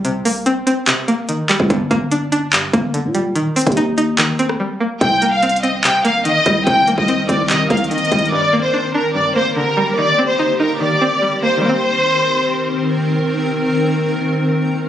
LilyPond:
<<
  \new Staff \with { instrumentName = "Violin section" } { \time 4/4 \key c \minor \tempo 4 = 145 r1 | r1 | r1 | g''8. f''8. ees''8 g''8 f''8 ees''4 |
g''8. ees''8. d''8 ees''8 f''8 ees''4 | d''8. c''8. bes'8 d''8 c''8 bes'4 | d''8. c''8. bes'8 d''4. c''8 | c''2. r4 |
r1 | }
  \new Staff \with { instrumentName = "Ambient pad" } { \time 4/4 \key c \minor r1 | r1 | r1 | <ees c' bes'>1~ |
<ees c' bes'>1 | g'1~ | g'1 | <ees c' bes'>1~ |
<ees c' bes'>1 | }
  \new Staff \with { instrumentName = "Synth pluck" } { \time 4/4 \key c \minor <c ees g bes>8 bes8 c'8 c'8 c8 bes8 ees8 g8 | g,8 bes8 d'8 d'8 g,8 bes8 d8 g8 | ees8 c'8 ees'8 ees'8 ees8 c'8 g8 bes8 | c8 bes8 c'8 c'8 c8 bes8 ees8 g8 |
c8 bes8 c'8 c'8 c8 bes8 ees8 g8 | g,8 bes8 d'8 d'8 g,8 bes8 d8 g8 | ees8 c'8 ees'8 ees'8 ees8 c'8 g8 bes8 | <ees g bes c'>1~ |
<ees g bes c'>1 | }
  \new Staff \with { instrumentName = "808-style bass" } { \clef bass \time 4/4 \key c \minor c,4. r2 r16 c,16 | g,,8 g,,2 g,,8. bes,8. | r8. ees,2~ ees,16 r4 | c,2. r8 c,8 |
c,8. c,8. c,4 c,8 r8 c,8 | r1 | r1 | r1 |
r1 | }
  \new DrumStaff \with { instrumentName = "Drums" } \drummode { \time 4/4 hh8 hho8 hh8 hh8 <hc hh>8 hh8 hh8 <hc hh>16 bd16 | <hh bd>8 <hh bd>8 hh8 hh8 <hc hh>8 <hh bd>8 hh8 hh8 | hh8 <hh hho>32 hh32 <hh bd>32 hh32 hh8 hh8 <hc hh>8 hh16 ss16 r4 | <hh bd>8 hh8 \tuplet 3/2 { hh16 hh16 hh16 hh16 r16 r16 } <hc hh>8 hh8 hh8 <hh bd>8 |
<hh bd>8 hh16 bd16 hh8 <hh bd>8 \tuplet 3/2 { <hc hh>16 r16 r16 <hh bd>16 hh16 hh16 hh16 hh16 hh16 <hh bd>16 hh16 hh16 } | r4 r4 r4 r4 | r4 r4 r4 r4 | r4 r4 r4 r4 |
r4 r4 r4 r4 | }
>>